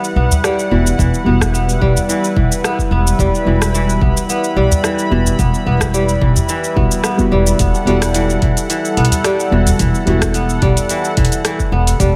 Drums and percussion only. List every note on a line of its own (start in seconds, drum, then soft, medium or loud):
0.04 shaker soft
0.31 udu medium
0.31 shaker medium
0.44 cross-stick medium
0.44 shaker soft
0.59 shaker soft
0.86 udu medium
0.86 shaker medium
0.99 kick loud
0.99 shaker medium
1.14 shaker soft
1.41 kick medium
1.41 cross-stick medium
1.41 shaker medium
1.55 shaker medium
1.69 shaker soft
1.81 kick medium
1.97 udu medium
1.97 shaker medium
2.09 shaker medium
2.24 shaker soft
2.37 kick loud
2.37 udu medium
2.52 shaker medium
2.64 cross-stick medium
2.64 shaker soft
2.79 kick medium
2.79 shaker soft
3.07 shaker medium
3.19 kick loud
3.19 shaker medium
3.35 shaker soft
3.62 cross-stick medium
3.62 shaker medium
3.75 shaker medium
3.90 shaker soft
4.01 kick loud
4.17 shaker medium
4.29 shaker medium
4.44 shaker soft
4.71 udu loud
4.71 shaker medium
4.84 cross-stick medium
4.84 shaker medium
4.99 shaker soft
5.26 udu medium
5.26 shaker medium
5.39 kick loud
5.39 shaker medium
5.54 shaker soft
5.81 kick medium
5.81 cross-stick medium
5.81 shaker medium
5.94 shaker medium
6.09 shaker soft
6.22 kick loud
6.36 udu medium
6.36 shaker medium
6.49 shaker medium
6.64 shaker soft
6.77 kick loud
6.77 udu medium
6.91 shaker medium
7.04 cross-stick medium
7.04 shaker medium
7.19 kick medium
7.19 shaker soft
7.47 shaker medium
7.59 kick loud
7.59 closed hi-hat soft
7.59 shaker medium
7.75 shaker soft
7.87 closed hi-hat soft
8.02 cross-stick medium
8.02 closed hi-hat soft
8.02 shaker medium
8.14 closed hi-hat soft
8.14 shaker medium
8.30 shaker soft
8.42 kick medium
8.42 closed hi-hat soft
8.57 closed hi-hat soft
8.57 shaker medium
8.70 closed hi-hat soft
8.70 shaker medium
8.85 shaker soft
8.97 closed hi-hat soft
9.05 closed hi-hat soft
9.11 closed hi-hat soft
9.11 udu loud
9.11 shaker medium
9.24 cross-stick medium
9.24 closed hi-hat medium
9.24 shaker medium
9.40 shaker soft
9.66 closed hi-hat soft
9.66 udu medium
9.66 shaker medium
9.79 kick loud
9.79 closed hi-hat soft
9.79 shaker medium
9.95 shaker soft
10.07 closed hi-hat soft
10.22 kick medium
10.22 cross-stick medium
10.22 closed hi-hat soft
10.22 shaker medium
10.34 closed hi-hat medium
10.34 shaker soft
10.49 shaker soft
10.62 kick medium
10.62 closed hi-hat soft
10.77 closed hi-hat soft
10.77 udu medium
10.77 shaker medium
10.89 closed hi-hat soft
10.89 shaker soft
11.05 shaker soft
11.17 kick medium
11.17 closed hi-hat soft
11.17 udu medium
11.25 closed hi-hat medium
11.32 closed hi-hat soft
11.32 shaker medium
11.45 cross-stick medium
11.45 closed hi-hat medium
11.45 shaker medium
11.60 kick medium
11.60 shaker soft
11.87 closed hi-hat soft
11.87 shaker medium
12.00 kick loud
12.00 closed hi-hat medium
12.00 shaker medium